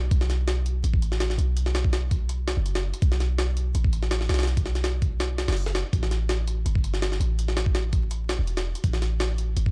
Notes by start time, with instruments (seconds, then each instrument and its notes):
0.11 808-style bass B1, kick, closed hi-hat
0.21 snare
0.30 snare, closed hi-hat
0.48 snare, closed hi-hat
0.66 closed hi-hat
0.84 808-style bass A1, closed hi-hat
0.94 kick
1.02 closed hi-hat
1.12 snare
1.20 snare, closed hi-hat
1.30 snare
1.38 808-style bass B1, closed hi-hat
1.57 closed hi-hat
1.66 snare
1.75 snare, closed hi-hat
1.84 kick
1.93 snare, closed hi-hat
2.11 kick, closed hi-hat
2.29 closed hi-hat
2.48 snare, closed hi-hat
2.57 808-style bass F#1
2.66 closed hi-hat
2.75 snare, closed hi-hat
2.94 closed hi-hat
3.02 808-style bass B1, kick, closed hi-hat
3.12 snare
3.20 snare, closed hi-hat
3.38 snare, closed hi-hat
3.57 closed hi-hat
3.75 808-style bass A1, closed hi-hat
3.84 kick
3.93 closed hi-hat
4.03 snare
4.11 snare, closed hi-hat
4.21 snare
4.29 808-style bass B1, snare, closed hi-hat
4.34 snare, closed hi-hat
4.39 snare, closed hi-hat
4.43 snare, closed hi-hat
4.47 snare, closed hi-hat
4.57 kick, closed hi-hat
4.66 snare
4.75 snare, closed hi-hat
4.84 snare, closed hi-hat
5.02 kick, closed hi-hat
5.20 snare, closed hi-hat
5.38 snare, closed hi-hat
5.48 808-style bass F#1, snare, closed hi-hat
5.52 snare, closed hi-hat
5.57 open hi-hat
5.66 snare
5.75 snare, closed hi-hat
5.93 808-style bass A1, kick, closed hi-hat
6.03 snare
6.11 snare, closed hi-hat
6.29 snare, closed hi-hat
6.48 closed hi-hat
6.66 808-style bass G1, closed hi-hat
6.75 kick
6.84 closed hi-hat
6.94 snare
7.02 snare, closed hi-hat
7.12 snare
7.20 808-style bass A1, closed hi-hat
7.39 closed hi-hat
7.48 snare
7.57 snare, closed hi-hat
7.66 kick
7.75 snare, closed hi-hat
7.93 kick, closed hi-hat
8.11 closed hi-hat
8.29 snare, closed hi-hat
8.39 808-style bass E1
8.47 closed hi-hat
8.57 snare, closed hi-hat
8.75 closed hi-hat
8.84 808-style bass A1, kick, closed hi-hat
8.93 snare
9.02 snare, closed hi-hat
9.20 snare, closed hi-hat
9.38 closed hi-hat
9.57 808-style bass G1, closed hi-hat
9.66 kick